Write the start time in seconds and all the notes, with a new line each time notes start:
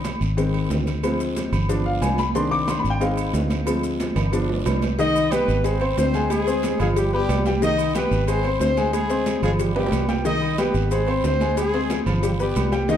Already playing: C2
0.04 cowbell, high conga, low timbale, low agogo, short guiro, maracas
0.21 G#1, high conga, short guiro, maracas
0.37 D#3 G#3 C4, cowbell, high conga, low agogo, long guiro, maracas
0.54 low agogo
0.70 D2, cowbell, high conga, low timbale, short guiro, maracas
0.87 cowbell, high conga, low agogo, short guiro, maracas
1.03 F3 G#3 C4, cowbell, high conga, low agogo, long guiro, maracas
1.20 cowbell, high conga, maracas
1.36 cowbell, high conga, low timbale, low agogo, short guiro, maracas
1.52 G1, high conga, low conga, low agogo, short guiro, maracas
1.69 F3 B3 D4, cowbell, high conga, low conga, low agogo, long guiro, maracas
1.86 F5, high conga
2.01 C2 G#5, cowbell, high conga, low timbale, low agogo, short guiro, maracas
2.18 B5, cowbell, high conga, low agogo, short guiro, maracas
2.35 D#3 C4 D4 C6, cowbell, high conga, long guiro, maracas
2.51 D6, low agogo
2.68 C6, cowbell, high conga, low timbale, low agogo, short guiro, maracas
2.79 B5
2.84 G#1, high conga, short guiro, maracas
2.90 G5
3.01 G#3 C4 D#4 F5, cowbell, high conga, low agogo, long guiro, maracas
3.17 high conga, low agogo, maracas
3.33 D2, cowbell, high conga, low timbale, short guiro, maracas
3.50 cowbell, high conga, low agogo, short guiro, maracas
3.66 F3 G#3 C4, cowbell, high conga, low agogo, long guiro, maracas
3.83 cowbell, high conga, maracas
4.00 cowbell, high conga, low timbale, low agogo, short guiro, maracas
4.16 G1, high conga, low conga, high timbale, low agogo, short guiro, maracas
4.32 F3 B3 D4, cowbell, high conga, low agogo, long guiro, maracas
4.49 low timbale
4.66 C2, cowbell, high conga, low timbale, low agogo, short guiro, maracas
4.82 cowbell, high conga, low timbale, low agogo, short guiro, maracas
4.99 D#3 D#4 D#5, cowbell, high conga, long guiro, maracas
5.15 high conga, low agogo, maracas
5.31 G3 B3 G4 B4 G5, cowbell, high conga, low timbale, low agogo, short guiro, maracas
5.48 G#1, high conga, short guiro, maracas
5.64 G#3 C4 G#4 C5 G#5, cowbell, low agogo, long guiro, maracas
5.81 C4 C5 C6, high conga, low agogo
5.97 D2 C4 C5, cowbell, high conga, low timbale, short guiro, maracas
6.14 G#3 G#4 G#5, cowbell, high conga, low agogo, short guiro, maracas
6.30 G#3 G#4, cowbell, high conga, low agogo, long guiro, maracas
6.47 C4 C5 C6, cowbell, maracas
6.63 cowbell, high conga, low timbale, low agogo, short guiro, maracas
6.79 G1 F3 G#3 F4 G#4 F5, high conga, low conga, low agogo, short guiro, maracas
6.96 G3 G4, cowbell, high conga, low agogo, long guiro, maracas
7.13 G3 B3 G4 B4 B5, high conga
7.29 C2, cowbell, high conga, low timbale, low agogo, short guiro, maracas
7.46 G3 G4 G5, cowbell, high conga, low agogo, short guiro, maracas
7.62 D#3 D#4 D#5, cowbell, high conga, long guiro, maracas
7.78 low agogo, maracas
7.95 G3 B3 G4 B4 G5, cowbell, high conga, low timbale, low agogo, short guiro, maracas
8.11 G#1, high conga, short guiro, maracas
8.28 G#3 C4 G#4 C5 G#5, cowbell, high conga, low agogo, long guiro, maracas
8.44 C4 C5 C6, high conga, low agogo
8.60 D2 C4 C5, cowbell, low timbale, short guiro, maracas
8.77 G#3 G#4 G#5, cowbell, high conga, low agogo, short guiro, maracas
8.93 G#3 G#4, cowbell, high conga, low agogo, long guiro, maracas
9.10 C4 C5 C6, cowbell, high conga, maracas
9.26 cowbell, high conga, low timbale, low agogo, short guiro, maracas
9.42 G1 F3 G#3 F4 G#4 F5, high conga, low conga, low agogo, short guiro, maracas
9.59 G3 G4, cowbell, high conga, low conga, low agogo, long guiro, maracas
9.75 G3 B3 G4 B4 B5, high conga, high timbale
9.87 low timbale
9.92 C2, cowbell, high conga, low agogo, short guiro, maracas
10.09 G3 G4 G5, cowbell, high conga, low timbale, low agogo, short guiro, maracas
10.25 D#3 D#4 D#5, cowbell, high conga, long guiro, maracas
10.42 high conga, low agogo
10.58 G3 B3 G4 B4 G5, cowbell, high conga, low timbale, low agogo, short guiro, maracas
10.74 G#1, high conga, short guiro, maracas
10.91 G#3 C4 G#4 C5 G#5, cowbell, high conga, low agogo, long guiro, maracas
11.08 C4 C5 C6, high conga, low agogo
11.24 D2 C4 C5, cowbell, low timbale, short guiro, maracas
11.40 G#3 G#4 G#5, cowbell, high conga, low agogo, short guiro, maracas
11.57 G#3 G#4, cowbell, high conga, low agogo, long guiro, maracas
11.74 C4 C5 C6, cowbell
11.90 cowbell, high conga, low timbale, low agogo, short guiro, maracas
12.06 G1 F3 F4 F5, high conga, low conga, low agogo, short guiro, maracas
12.23 G3 G4, cowbell, high conga, low conga, low agogo, long guiro, maracas
12.40 G3 B3 G4 B4 B5, high conga, maracas
12.56 C2, cowbell, high conga, low timbale, low agogo, short guiro, maracas
12.72 G3 G4 G5, cowbell, high conga, low agogo, short guiro, maracas
12.88 D#3 D#4 D#5, cowbell, high conga, long guiro, maracas